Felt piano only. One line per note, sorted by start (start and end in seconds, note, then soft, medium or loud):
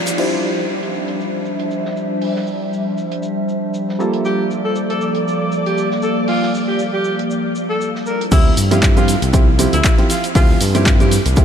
0.17 3.96 G3 medium
0.17 3.97 D4 medium
0.17 3.97 E4 medium
0.17 3.97 F4 medium
0.17 3.97 C5 medium
3.99 8.03 G3 medium
3.99 8.03 A#3 medium
3.99 8.04 F4 medium
3.99 8.04 A4 medium
8.31 8.52 F3 medium
8.31 8.52 C4 medium
8.31 8.52 E4 medium
8.31 8.52 G4 loud
8.71 8.93 F3 loud
8.71 8.93 C4 medium
8.71 8.93 E4 medium
8.71 8.94 G4 loud
8.96 9.07 F3 loud
8.96 9.07 C4 medium
8.96 9.08 E4 medium
8.96 9.08 G4 loud
9.33 9.47 F3 loud
9.33 9.47 C4 medium
9.33 9.47 E4 medium
9.33 9.47 G4 loud
9.59 9.72 F3 loud
9.59 9.72 C4 medium
9.59 9.72 E4 medium
9.59 9.73 G4 loud
9.98 10.09 F3 medium
9.98 10.09 C4 medium
9.98 10.09 E4 medium
9.98 10.09 G4 medium
10.35 10.55 F3 medium
10.35 10.55 C4 medium
10.35 10.55 E4 medium
10.35 10.55 G4 loud
10.74 10.97 F3 loud
10.74 10.97 C4 medium
10.74 10.97 E4 medium
10.74 10.97 G4 loud
11.00 11.11 F3 medium
11.00 11.11 C4 medium
11.00 11.11 E4 medium
11.00 11.11 G4 loud
11.37 11.45 F3 loud
11.37 11.45 C4 medium
11.37 11.45 E4 medium
11.37 11.45 G4 loud